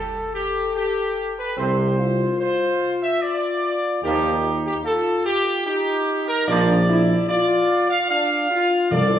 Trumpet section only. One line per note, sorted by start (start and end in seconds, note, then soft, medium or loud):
0.00 0.32 A4 loud
0.34 0.73 G4 loud
0.75 1.33 G4 loud
1.38 1.57 B4 loud
1.58 2.38 C5 loud
2.39 2.97 C5 loud
3.02 3.21 E5 loud
3.21 4.03 D5 loud
4.03 4.60 G4 loud
4.65 4.74 G4 loud
4.85 5.23 A4 loud
5.26 5.64 G4 loud
5.66 6.23 G4 loud
6.28 6.47 A#4 loud
6.47 7.24 D5 loud
7.29 7.85 D5 loud
7.90 8.08 F5 loud
8.09 8.87 F5 loud
8.91 9.19 D5 loud